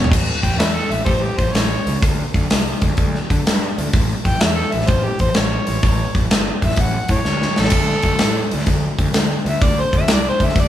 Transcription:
Already playing: E2 B2 C#5
0.04 floor tom
0.11 A1, kick, crash
0.43 A1 G5, kick, open hi-hat
0.56 E2 B4 C#5 E5, snare, open hi-hat
0.76 A4
0.91 A1 E5, open hi-hat
1.05 A1 G4 A4 C5, kick, open hi-hat
1.23 G4
1.38 A1 C5, kick, open hi-hat
1.53 A1 C#5, snare, open hi-hat
1.87 C#2, open hi-hat
2.02 D2, kick, open hi-hat
2.34 D2, kick, open hi-hat
2.50 C2, snare, open hi-hat
2.81 D2, kick, open hi-hat
2.97 D2, kick, open hi-hat
3.15 snare
3.30 D3, kick, open hi-hat
3.47 G2, snare, open hi-hat
3.78 D2, open hi-hat
3.93 A1, kick, open hi-hat
4.25 A1 G5, kick, open hi-hat
4.41 E2 E5, snare, open hi-hat
4.57 A4
4.72 A1 E5, open hi-hat
4.81 snare
4.87 A1 C5, kick, open hi-hat
5.04 G4
5.19 A1 C5, kick, open hi-hat
5.34 A1 C#5, snare, open hi-hat
5.67 A1, open hi-hat
5.83 A1, kick, open hi-hat
6.15 A1, kick, open hi-hat
6.30 G1, snare, open hi-hat
6.62 A1 E5, kick, open hi-hat
6.70 snare
6.76 A1, kick, open hi-hat
6.81 F#5
7.08 A2, kick, open hi-hat
7.12 C#5
7.25 D2, snare
7.42 snare
7.56 A1, snare
7.60 A4
7.65 snare
7.70 D2, kick, open hi-hat, crash
8.02 D2, kick, open hi-hat
8.19 A2, snare, open hi-hat
8.51 D2, open hi-hat
8.60 snare
8.66 D2, kick, open hi-hat
8.99 D2, kick, open hi-hat
9.13 D2, snare, open hi-hat
9.45 D2 E5, open hi-hat
9.62 D2 D5, kick, open hi-hat
9.80 C5
9.93 D2, kick, open hi-hat
9.97 E5
10.08 C2, snare, open hi-hat
10.13 D5
10.29 C5
10.40 D2, kick, open hi-hat
10.45 E5, snare
10.55 D2, kick, open hi-hat
10.61 D5

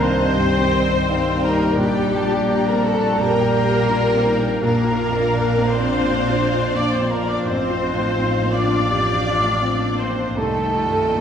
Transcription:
Already playing: C2 G2 D#3 G3 D4 G4 F5
0.00 C4 C5 D#5 C6
0.13 D#3
0.35 G2 D#5 G5
0.60 G4
0.73 D#5
0.84 G2
1.08 C4 D#4 F5 G5
1.32 D4
1.43 A#3 D#4 A#4 D#5 A#5
1.55 D#4
1.78 A#1 G3 D4 G4 D5 G5
2.02 G4
2.15 A5
2.25 A#2
2.49 D4 D5 A#5
2.67 A#3 A#4 A#5
2.72 C4
2.84 A3 A4 A5
2.95 D4
3.17 A#1 A#3 G4 A#4 G5 A#5
3.41 G4
3.54 G5
3.64 A#2
3.89 D4 F4 D5 G5
4.14 C4
4.27 D#4
4.38 D4
4.61 A#1 F3 A#3 D4 A#4 D5 F5 A#5
4.84 F4
4.99 F4
5.09 F2
5.34 D4
5.57 C4
5.68 C4 C5 C6
5.82 D4
6.05 F2
6.29 F4
6.53 F2
6.74 A#3 D4 D5 D6
6.92 C4 C5 C6
7.00 C4
7.10 A#3 A#4 A#5
7.23 D4
7.27 D4 D5 D6
7.44 A1 C4 F4 C5 F5 C6
7.70 F4
7.84 D4
7.94 A2
8.18 C4 D#4
8.42 A#3
8.53 D4 F4 D5 D6
8.66 C4
8.90 A1 G4
9.15 F4
9.27 F4
9.39 A2
9.62 C4
9.89 A#3
10.00 C4 D4 C5 C6
10.13 C4
10.36 C2 D#3 G3 A3 D#4 A4 D#5 G5 A5
10.63 D#4
10.76 F4
10.87 G2
11.11 A#2 D#4

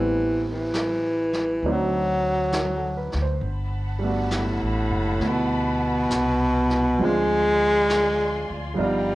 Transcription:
Already playing: A1 E3 G3 A3 B3 C4 E4
0.52 E3
0.73 snare, hi-hat pedal
1.33 snare
1.62 D2 F#3 A3 C4 D4 D#4, brush sweep
1.71 F#3
2.52 F#4, snare, hi-hat pedal
2.77 A4
2.97 B4
3.12 D2, snare
3.22 C5
3.41 G1 F#5 A5 B5, brush sweep
3.99 G3 A3
4.04 B3 D4
4.09 F#4
4.31 snare, hi-hat pedal
4.37 A2
4.62 A1
4.90 F#1
5.19 D2 A3 B3 E4, brush sweep, snare
5.28 B2
6.10 C2, snare, hi-hat pedal
6.70 snare
6.98 D2 F3 G#3 C4 F4 D5 G#5 C6, brush sweep
7.02 G#3 D4 F4
7.90 snare, hi-hat pedal
8.50 D2
8.74 G1 F3 G3 B3, brush sweep
8.78 D#4 F4 F5 G5 A#5
8.83 G3

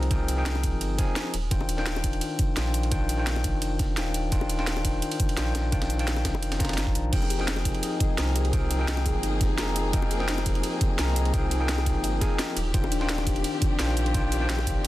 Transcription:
Already playing: C2 F3 C4 D#4 G#4 A#4 G5 A#5
0.03 ride
0.10 F3 C4 D#4 G#4 A#4 G5, kick, closed hi-hat, ride
0.28 closed hi-hat, ride
0.36 F3 C4 D#4 G#4 A#4 G5
0.46 snare, closed hi-hat, ride
0.55 high bongo
0.63 kick, closed hi-hat, ride
0.73 G1
0.81 closed hi-hat, ride
0.98 F3 C4 D#4 G#4 A#4 G#5, kick, snare, closed hi-hat, ride
1.16 snare, closed hi-hat, ride
1.34 D#1, closed hi-hat, ride
1.51 D#1 D#3 D4 F4 C5 G5, kick, closed hi-hat, ride
1.61 high bongo
1.69 closed hi-hat, ride
1.77 D#3 D4 F4 C5 G5, snare
1.86 snare, closed hi-hat, ride
1.96 high bongo
2.04 kick, closed hi-hat, ride
2.13 ride
2.21 closed hi-hat, ride
2.39 kick, closed hi-hat, ride
2.56 A#1 D#3 D4 F4 C5 G5, snare, closed hi-hat, ride
2.74 closed hi-hat, ride
2.83 ride
2.91 D#3 D4 F4 C5 G5, kick, closed hi-hat, ride
3.09 closed hi-hat, ride
3.17 D#3 D4 F4 C5 G5
3.27 snare, closed hi-hat, ride
3.36 high bongo
3.44 kick, closed hi-hat, ride
3.54 F1
3.62 closed hi-hat, ride
3.79 kick, snare, closed hi-hat, ride
3.96 D#1 D#3 D4 F4 C5 G5, snare, closed hi-hat, ride
4.14 closed hi-hat, ride
4.31 D#1 D#3 D4 F4 C5 G5, kick, closed hi-hat, ride
4.41 high bongo
4.49 closed hi-hat, ride
4.58 D#3 D4 F4 C5 G5, snare
4.67 snare, closed hi-hat, ride
4.77 high bongo
4.85 kick, closed hi-hat, ride
5.02 closed hi-hat, ride
5.11 ride
5.20 kick, closed hi-hat
5.29 ride
5.37 A#1 D#3 D4 F4 C5 G5, snare, closed hi-hat, ride
5.55 snare, closed hi-hat, ride
5.72 D#3 D4 F4 C5 G5, kick, closed hi-hat, ride
5.82 snare, ride
5.90 closed hi-hat
5.98 D#3 D4 F4 C5 G5, ride
6.07 snare, closed hi-hat, ride
6.16 high bongo
6.25 kick, snare, closed hi-hat, ride
6.34 F1, high bongo
6.43 closed hi-hat, ride
6.52 snare, ride
6.59 G1 D#3 D4 F4 C5 A#5, kick, snare, closed hi-hat, ride
6.65 snare, ride
6.69 snare, ride
6.73 snare, ride
6.77 snare, closed hi-hat, ride
6.87 kick
6.95 A#1, closed hi-hat, ride
7.12 F1 F3 A#3 C4 D#4 G#4 A#4 G5, kick, closed hi-hat, ride, crash
7.22 high bongo
7.30 G4, closed hi-hat, ride
7.38 F3 C4 D#4 G#4 A#4 G5, snare
7.48 snare, closed hi-hat, ride
7.56 high bongo
7.65 D#4, kick, closed hi-hat, ride
7.74 ride
7.83 D#5, closed hi-hat, ride
8.00 G#4, kick, closed hi-hat, ride
8.17 C2 F3 C4 D#4 G#4 A#4 A#5, snare, closed hi-hat, ride
8.35 G4, closed hi-hat, ride
8.45 ride
8.52 F3 C4 D#4 G#4 A#4 G5, kick, closed hi-hat, ride
8.71 D#4, closed hi-hat, ride
8.79 F3 C4 D#4 G#4 A#4 G5
8.88 D#5, snare, closed hi-hat, ride
8.97 high bongo
9.06 G#4, kick, closed hi-hat, ride
9.15 G1
9.23 D#4, closed hi-hat, ride
9.41 G4, kick, snare, closed hi-hat, ride
9.58 F1 F3 C4 D#4 G#4 A#4 A#5, snare, closed hi-hat, ride
9.76 D#4, closed hi-hat, ride
9.93 F1 F3 C4 D#4 G#4 A#4 D#5 G5, kick, closed hi-hat, ride
10.02 high bongo
10.11 G#4, closed hi-hat, ride
10.19 F3 C4 D#4 G#4 A#4 G5, snare
10.28 D#4, snare, closed hi-hat, ride
10.38 high bongo
10.46 G4, kick, closed hi-hat, ride
10.55 ride
10.63 closed hi-hat, ride
10.81 D#4, kick, closed hi-hat, ride
10.98 C2 F3 C4 D#4 G#4 A#4 D#5 A#5, snare, closed hi-hat, ride
11.16 G#4, closed hi-hat, ride
11.25 ride
11.33 F3 C4 D#4 G#4 A#4 G5, kick, closed hi-hat, ride
11.51 G4, closed hi-hat, ride
11.59 F3 C4 D#4 G#4 A#4 G5
11.69 snare, closed hi-hat, ride
11.78 high bongo
11.86 D#4, kick, closed hi-hat, ride
11.95 G1
12.04 D#5, closed hi-hat, ride
12.21 F3 C4 D#4 G#4 A#4 G#5, kick, snare, closed hi-hat, ride
12.39 D#4, snare, closed hi-hat, ride
12.56 D#1 F3 C4 D4 F4 G4, closed hi-hat, ride
12.73 D#1 D#3 D4 F4 C5 G5, kick, closed hi-hat, ride
12.84 high bongo
12.92 D4, closed hi-hat, ride
13.00 D#3 D4 F4 C5 G5, snare
13.09 D5, snare, closed hi-hat, ride
13.18 high bongo
13.27 G4, kick, closed hi-hat, ride
13.36 ride
13.44 D4, closed hi-hat, ride
13.62 F4, kick, closed hi-hat, ride
13.79 A#1 D#3 D4 F4 C5 G5, snare, closed hi-hat, ride
13.97 D4, closed hi-hat, ride
14.06 ride
14.14 D#3 D4 F4 C5 D5 G5, kick, closed hi-hat, ride
14.32 G4, closed hi-hat, ride
14.40 D#3 D4 F4 C5 G5
14.49 D4, snare, closed hi-hat, ride
14.59 high bongo
14.67 F4, kick, closed hi-hat, ride
14.76 F1

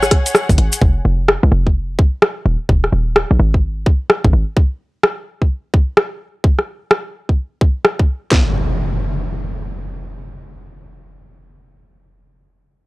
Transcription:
Already playing: G#1 G#4 C#5 F#5
0.03 cross-stick, maracas
0.11 kick, cross-stick, closed hi-hat
0.26 closed hi-hat, maracas
0.35 cross-stick, maracas
0.49 G#1, kick, closed hi-hat, maracas
0.58 G#1, closed hi-hat
0.72 closed hi-hat, maracas
0.82 F1, kick
1.05 F1
1.28 cross-stick
1.43 C2
1.52 F1
1.67 kick
1.99 kick
2.22 cross-stick
2.46 D#1
2.69 D#1, kick
2.84 cross-stick
2.93 D#1
3.16 cross-stick
3.31 A#1
3.40 G#1
3.54 kick
3.86 kick
4.10 cross-stick
4.24 G#1, kick
4.33 G#1
4.57 kick
5.03 cross-stick
5.42 kick
5.74 kick
5.97 cross-stick
6.44 kick
6.59 cross-stick
6.91 cross-stick
7.29 kick
7.61 kick
7.85 cross-stick
7.99 kick
8.31 kick, snare, clap, impact

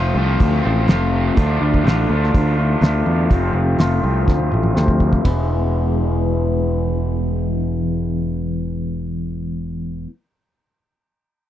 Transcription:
Already playing: F1 F3 A3 C4 F4
0.15 C2 F3 A3 C4 F4
0.40 D2, kick, open hi-hat
0.63 A1 F3 A3 C4 F4
0.88 F1 F2 C3 F3 A3 C4 F4, snare, open hi-hat
1.36 D2 D3 A3 D4 F4, kick, open hi-hat
1.60 D2 A3 D4 F4
1.74 kick
1.84 A1 D3 A3 D4 F4, snare, open hi-hat
2.09 D2 A3 D4 F4
2.24 snare
2.34 D2, kick, open hi-hat
2.57 A3 D4 F4
2.81 D2 D3 A3 D4 F4, snare, open hi-hat
3.06 E2
3.30 F1 F2 C3 F3 A3 C4 F4, kick, open hi-hat
3.53 F1 F3 A3 C4 F4
3.78 F1 F3 A3 C4 F4, snare, open hi-hat
4.01 C2 F3 A3 C4 F4
4.28 D2, kick, snare
4.39 high tom
4.50 A1 F3 A3 C4 F4, mid tom
4.63 mid tom
4.74 D2 F2 C3 F3 A3 C4 F4, snare
4.88 kick
5.00 kick
5.13 kick
5.21 E1 E3 G#3 B3, kick, ride
5.25 E4

